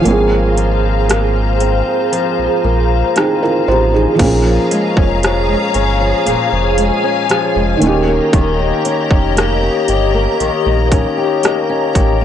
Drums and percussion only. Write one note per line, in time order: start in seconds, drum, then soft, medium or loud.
0.05 closed hi-hat medium
0.57 closed hi-hat medium
1.09 cross-stick loud
1.09 closed hi-hat medium
1.60 closed hi-hat medium
2.13 closed hi-hat medium
3.16 cross-stick loud
3.16 closed hi-hat medium
4.19 kick loud
4.19 closed hi-hat medium
4.19 crash medium
4.71 closed hi-hat medium
4.97 kick loud
5.23 cross-stick loud
5.23 closed hi-hat medium
5.74 closed hi-hat medium
6.27 closed hi-hat medium
6.78 closed hi-hat medium
7.29 cross-stick loud
7.29 closed hi-hat medium
7.82 closed hi-hat medium
8.33 kick loud
8.33 closed hi-hat medium
8.85 closed hi-hat medium
9.11 kick medium
9.37 cross-stick loud
9.37 closed hi-hat medium
9.88 closed hi-hat medium
10.40 closed hi-hat medium
10.92 kick medium
10.92 closed hi-hat medium
11.43 cross-stick loud
11.43 closed hi-hat medium
11.95 kick medium
11.95 closed hi-hat medium